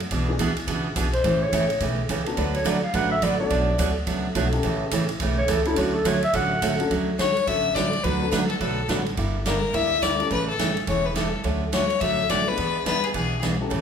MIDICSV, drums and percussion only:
0, 0, Header, 1, 2, 480
1, 0, Start_track
1, 0, Key_signature, 2, "major"
1, 0, Tempo, 283420
1, 186, Time_signature, 4, 2, 24, 8
1, 23390, End_track
2, 0, Start_track
2, 0, Title_t, "Drums"
2, 3, Note_on_c, 9, 51, 53
2, 173, Note_off_c, 9, 51, 0
2, 182, Note_on_c, 9, 51, 69
2, 183, Note_on_c, 9, 36, 20
2, 351, Note_off_c, 9, 51, 0
2, 352, Note_off_c, 9, 36, 0
2, 661, Note_on_c, 9, 44, 57
2, 661, Note_on_c, 9, 51, 80
2, 663, Note_on_c, 9, 36, 29
2, 831, Note_off_c, 9, 44, 0
2, 831, Note_off_c, 9, 51, 0
2, 833, Note_off_c, 9, 36, 0
2, 958, Note_on_c, 9, 51, 60
2, 1128, Note_off_c, 9, 51, 0
2, 1144, Note_on_c, 9, 36, 27
2, 1146, Note_on_c, 9, 51, 73
2, 1314, Note_off_c, 9, 36, 0
2, 1315, Note_off_c, 9, 51, 0
2, 1622, Note_on_c, 9, 36, 26
2, 1622, Note_on_c, 9, 44, 66
2, 1622, Note_on_c, 9, 51, 77
2, 1792, Note_off_c, 9, 36, 0
2, 1792, Note_off_c, 9, 44, 0
2, 1792, Note_off_c, 9, 51, 0
2, 1919, Note_on_c, 9, 51, 48
2, 2088, Note_off_c, 9, 51, 0
2, 2101, Note_on_c, 9, 51, 62
2, 2102, Note_on_c, 9, 36, 26
2, 2271, Note_off_c, 9, 51, 0
2, 2272, Note_off_c, 9, 36, 0
2, 2582, Note_on_c, 9, 36, 24
2, 2585, Note_on_c, 9, 44, 56
2, 2585, Note_on_c, 9, 51, 85
2, 2751, Note_off_c, 9, 36, 0
2, 2755, Note_off_c, 9, 44, 0
2, 2755, Note_off_c, 9, 51, 0
2, 2877, Note_on_c, 9, 51, 54
2, 3046, Note_off_c, 9, 51, 0
2, 3055, Note_on_c, 9, 51, 70
2, 3059, Note_on_c, 9, 36, 26
2, 3225, Note_off_c, 9, 51, 0
2, 3228, Note_off_c, 9, 36, 0
2, 3539, Note_on_c, 9, 36, 20
2, 3539, Note_on_c, 9, 44, 52
2, 3539, Note_on_c, 9, 51, 71
2, 3708, Note_off_c, 9, 44, 0
2, 3708, Note_off_c, 9, 51, 0
2, 3709, Note_off_c, 9, 36, 0
2, 3832, Note_on_c, 9, 51, 56
2, 4001, Note_off_c, 9, 51, 0
2, 4014, Note_on_c, 9, 51, 62
2, 4017, Note_on_c, 9, 36, 23
2, 4183, Note_off_c, 9, 51, 0
2, 4186, Note_off_c, 9, 36, 0
2, 4310, Note_on_c, 9, 51, 57
2, 4479, Note_off_c, 9, 51, 0
2, 4497, Note_on_c, 9, 36, 21
2, 4497, Note_on_c, 9, 44, 70
2, 4497, Note_on_c, 9, 51, 89
2, 4666, Note_off_c, 9, 36, 0
2, 4666, Note_off_c, 9, 44, 0
2, 4666, Note_off_c, 9, 51, 0
2, 4972, Note_on_c, 9, 51, 76
2, 4976, Note_on_c, 9, 36, 28
2, 5142, Note_off_c, 9, 51, 0
2, 5145, Note_off_c, 9, 36, 0
2, 5452, Note_on_c, 9, 44, 61
2, 5452, Note_on_c, 9, 51, 75
2, 5455, Note_on_c, 9, 36, 28
2, 5621, Note_off_c, 9, 44, 0
2, 5621, Note_off_c, 9, 51, 0
2, 5625, Note_off_c, 9, 36, 0
2, 5934, Note_on_c, 9, 36, 23
2, 5934, Note_on_c, 9, 51, 68
2, 6103, Note_off_c, 9, 36, 0
2, 6103, Note_off_c, 9, 51, 0
2, 6414, Note_on_c, 9, 36, 21
2, 6415, Note_on_c, 9, 44, 69
2, 6415, Note_on_c, 9, 51, 79
2, 6584, Note_off_c, 9, 36, 0
2, 6584, Note_off_c, 9, 44, 0
2, 6584, Note_off_c, 9, 51, 0
2, 6889, Note_on_c, 9, 51, 70
2, 6892, Note_on_c, 9, 36, 27
2, 7058, Note_off_c, 9, 51, 0
2, 7061, Note_off_c, 9, 36, 0
2, 7367, Note_on_c, 9, 44, 56
2, 7367, Note_on_c, 9, 51, 79
2, 7371, Note_on_c, 9, 36, 25
2, 7537, Note_off_c, 9, 44, 0
2, 7537, Note_off_c, 9, 51, 0
2, 7540, Note_off_c, 9, 36, 0
2, 7662, Note_on_c, 9, 51, 49
2, 7832, Note_off_c, 9, 51, 0
2, 7840, Note_on_c, 9, 51, 64
2, 7848, Note_on_c, 9, 36, 19
2, 8010, Note_off_c, 9, 51, 0
2, 8018, Note_off_c, 9, 36, 0
2, 8321, Note_on_c, 9, 44, 70
2, 8321, Note_on_c, 9, 51, 82
2, 8328, Note_on_c, 9, 36, 26
2, 8491, Note_off_c, 9, 44, 0
2, 8491, Note_off_c, 9, 51, 0
2, 8497, Note_off_c, 9, 36, 0
2, 8614, Note_on_c, 9, 51, 57
2, 8784, Note_off_c, 9, 51, 0
2, 8801, Note_on_c, 9, 51, 76
2, 8807, Note_on_c, 9, 36, 23
2, 8971, Note_off_c, 9, 51, 0
2, 8976, Note_off_c, 9, 36, 0
2, 9279, Note_on_c, 9, 44, 67
2, 9279, Note_on_c, 9, 51, 78
2, 9287, Note_on_c, 9, 36, 25
2, 9449, Note_off_c, 9, 44, 0
2, 9449, Note_off_c, 9, 51, 0
2, 9456, Note_off_c, 9, 36, 0
2, 9575, Note_on_c, 9, 51, 50
2, 9744, Note_off_c, 9, 51, 0
2, 9759, Note_on_c, 9, 51, 76
2, 9766, Note_on_c, 9, 36, 22
2, 9928, Note_off_c, 9, 51, 0
2, 9935, Note_off_c, 9, 36, 0
2, 10248, Note_on_c, 9, 44, 60
2, 10248, Note_on_c, 9, 51, 84
2, 10249, Note_on_c, 9, 36, 29
2, 10417, Note_off_c, 9, 44, 0
2, 10417, Note_off_c, 9, 51, 0
2, 10418, Note_off_c, 9, 36, 0
2, 10543, Note_on_c, 9, 51, 56
2, 10712, Note_off_c, 9, 51, 0
2, 10728, Note_on_c, 9, 51, 73
2, 10729, Note_on_c, 9, 36, 27
2, 10897, Note_off_c, 9, 51, 0
2, 10899, Note_off_c, 9, 36, 0
2, 11211, Note_on_c, 9, 36, 30
2, 11211, Note_on_c, 9, 44, 70
2, 11211, Note_on_c, 9, 51, 85
2, 11381, Note_off_c, 9, 36, 0
2, 11381, Note_off_c, 9, 44, 0
2, 11381, Note_off_c, 9, 51, 0
2, 11512, Note_on_c, 9, 51, 52
2, 11681, Note_off_c, 9, 51, 0
2, 11695, Note_on_c, 9, 36, 17
2, 11699, Note_on_c, 9, 51, 58
2, 11864, Note_off_c, 9, 36, 0
2, 11868, Note_off_c, 9, 51, 0
2, 12175, Note_on_c, 9, 36, 23
2, 12180, Note_on_c, 9, 38, 71
2, 12180, Note_on_c, 9, 44, 60
2, 12180, Note_on_c, 9, 51, 68
2, 12344, Note_off_c, 9, 36, 0
2, 12350, Note_off_c, 9, 38, 0
2, 12350, Note_off_c, 9, 44, 0
2, 12350, Note_off_c, 9, 51, 0
2, 12474, Note_on_c, 9, 51, 49
2, 12644, Note_off_c, 9, 51, 0
2, 12655, Note_on_c, 9, 36, 25
2, 12657, Note_on_c, 9, 51, 65
2, 12824, Note_off_c, 9, 36, 0
2, 12826, Note_off_c, 9, 51, 0
2, 13136, Note_on_c, 9, 36, 26
2, 13139, Note_on_c, 9, 38, 71
2, 13139, Note_on_c, 9, 44, 52
2, 13139, Note_on_c, 9, 51, 67
2, 13305, Note_off_c, 9, 36, 0
2, 13308, Note_off_c, 9, 38, 0
2, 13308, Note_off_c, 9, 44, 0
2, 13308, Note_off_c, 9, 51, 0
2, 13431, Note_on_c, 9, 51, 46
2, 13600, Note_off_c, 9, 51, 0
2, 13615, Note_on_c, 9, 36, 26
2, 13616, Note_on_c, 9, 51, 56
2, 13784, Note_off_c, 9, 36, 0
2, 13785, Note_off_c, 9, 51, 0
2, 14093, Note_on_c, 9, 36, 24
2, 14098, Note_on_c, 9, 38, 74
2, 14098, Note_on_c, 9, 44, 70
2, 14098, Note_on_c, 9, 51, 73
2, 14263, Note_off_c, 9, 36, 0
2, 14267, Note_off_c, 9, 38, 0
2, 14267, Note_off_c, 9, 44, 0
2, 14267, Note_off_c, 9, 51, 0
2, 14390, Note_on_c, 9, 51, 47
2, 14559, Note_off_c, 9, 51, 0
2, 14573, Note_on_c, 9, 36, 21
2, 14574, Note_on_c, 9, 51, 56
2, 14743, Note_off_c, 9, 36, 0
2, 14744, Note_off_c, 9, 51, 0
2, 15054, Note_on_c, 9, 36, 18
2, 15057, Note_on_c, 9, 38, 67
2, 15057, Note_on_c, 9, 44, 54
2, 15057, Note_on_c, 9, 51, 65
2, 15223, Note_off_c, 9, 36, 0
2, 15227, Note_off_c, 9, 38, 0
2, 15227, Note_off_c, 9, 44, 0
2, 15227, Note_off_c, 9, 51, 0
2, 15351, Note_on_c, 9, 51, 47
2, 15520, Note_off_c, 9, 51, 0
2, 15533, Note_on_c, 9, 36, 24
2, 15534, Note_on_c, 9, 51, 59
2, 15703, Note_off_c, 9, 36, 0
2, 15703, Note_off_c, 9, 51, 0
2, 16013, Note_on_c, 9, 36, 27
2, 16014, Note_on_c, 9, 38, 76
2, 16014, Note_on_c, 9, 44, 66
2, 16014, Note_on_c, 9, 51, 67
2, 16183, Note_off_c, 9, 36, 0
2, 16184, Note_off_c, 9, 38, 0
2, 16184, Note_off_c, 9, 44, 0
2, 16184, Note_off_c, 9, 51, 0
2, 16495, Note_on_c, 9, 36, 26
2, 16496, Note_on_c, 9, 51, 61
2, 16664, Note_off_c, 9, 36, 0
2, 16665, Note_off_c, 9, 51, 0
2, 16976, Note_on_c, 9, 36, 23
2, 16978, Note_on_c, 9, 38, 68
2, 16978, Note_on_c, 9, 44, 64
2, 16978, Note_on_c, 9, 51, 72
2, 17145, Note_off_c, 9, 36, 0
2, 17148, Note_off_c, 9, 38, 0
2, 17148, Note_off_c, 9, 44, 0
2, 17148, Note_off_c, 9, 51, 0
2, 17273, Note_on_c, 9, 51, 44
2, 17442, Note_off_c, 9, 51, 0
2, 17453, Note_on_c, 9, 51, 54
2, 17454, Note_on_c, 9, 36, 17
2, 17622, Note_off_c, 9, 51, 0
2, 17623, Note_off_c, 9, 36, 0
2, 17936, Note_on_c, 9, 36, 19
2, 17941, Note_on_c, 9, 38, 70
2, 17941, Note_on_c, 9, 44, 66
2, 17941, Note_on_c, 9, 51, 71
2, 18106, Note_off_c, 9, 36, 0
2, 18111, Note_off_c, 9, 38, 0
2, 18111, Note_off_c, 9, 44, 0
2, 18111, Note_off_c, 9, 51, 0
2, 18235, Note_on_c, 9, 51, 50
2, 18405, Note_off_c, 9, 51, 0
2, 18412, Note_on_c, 9, 51, 65
2, 18415, Note_on_c, 9, 36, 21
2, 18581, Note_off_c, 9, 51, 0
2, 18585, Note_off_c, 9, 36, 0
2, 18892, Note_on_c, 9, 38, 68
2, 18892, Note_on_c, 9, 44, 52
2, 18892, Note_on_c, 9, 51, 60
2, 18896, Note_on_c, 9, 36, 22
2, 19062, Note_off_c, 9, 38, 0
2, 19062, Note_off_c, 9, 44, 0
2, 19062, Note_off_c, 9, 51, 0
2, 19065, Note_off_c, 9, 36, 0
2, 19375, Note_on_c, 9, 51, 53
2, 19378, Note_on_c, 9, 36, 25
2, 19544, Note_off_c, 9, 51, 0
2, 19547, Note_off_c, 9, 36, 0
2, 19859, Note_on_c, 9, 36, 22
2, 19860, Note_on_c, 9, 38, 73
2, 19860, Note_on_c, 9, 44, 68
2, 19860, Note_on_c, 9, 51, 77
2, 20029, Note_off_c, 9, 36, 0
2, 20029, Note_off_c, 9, 38, 0
2, 20029, Note_off_c, 9, 44, 0
2, 20029, Note_off_c, 9, 51, 0
2, 20157, Note_on_c, 9, 51, 48
2, 20326, Note_off_c, 9, 51, 0
2, 20340, Note_on_c, 9, 36, 22
2, 20340, Note_on_c, 9, 51, 66
2, 20509, Note_off_c, 9, 51, 0
2, 20510, Note_off_c, 9, 36, 0
2, 20820, Note_on_c, 9, 36, 20
2, 20823, Note_on_c, 9, 38, 61
2, 20823, Note_on_c, 9, 44, 49
2, 20823, Note_on_c, 9, 51, 69
2, 20989, Note_off_c, 9, 36, 0
2, 20992, Note_off_c, 9, 38, 0
2, 20992, Note_off_c, 9, 44, 0
2, 20992, Note_off_c, 9, 51, 0
2, 21297, Note_on_c, 9, 51, 62
2, 21300, Note_on_c, 9, 36, 21
2, 21466, Note_off_c, 9, 51, 0
2, 21469, Note_off_c, 9, 36, 0
2, 21779, Note_on_c, 9, 36, 21
2, 21782, Note_on_c, 9, 38, 69
2, 21782, Note_on_c, 9, 44, 53
2, 21782, Note_on_c, 9, 51, 72
2, 21949, Note_off_c, 9, 36, 0
2, 21951, Note_off_c, 9, 38, 0
2, 21951, Note_off_c, 9, 44, 0
2, 21951, Note_off_c, 9, 51, 0
2, 22078, Note_on_c, 9, 51, 48
2, 22247, Note_off_c, 9, 51, 0
2, 22256, Note_on_c, 9, 51, 63
2, 22258, Note_on_c, 9, 36, 23
2, 22425, Note_off_c, 9, 51, 0
2, 22428, Note_off_c, 9, 36, 0
2, 22740, Note_on_c, 9, 36, 18
2, 22742, Note_on_c, 9, 38, 67
2, 22742, Note_on_c, 9, 44, 54
2, 22742, Note_on_c, 9, 51, 65
2, 22910, Note_off_c, 9, 36, 0
2, 22912, Note_off_c, 9, 38, 0
2, 22912, Note_off_c, 9, 44, 0
2, 22912, Note_off_c, 9, 51, 0
2, 23220, Note_on_c, 9, 36, 17
2, 23220, Note_on_c, 9, 51, 56
2, 23389, Note_off_c, 9, 36, 0
2, 23389, Note_off_c, 9, 51, 0
2, 23390, End_track
0, 0, End_of_file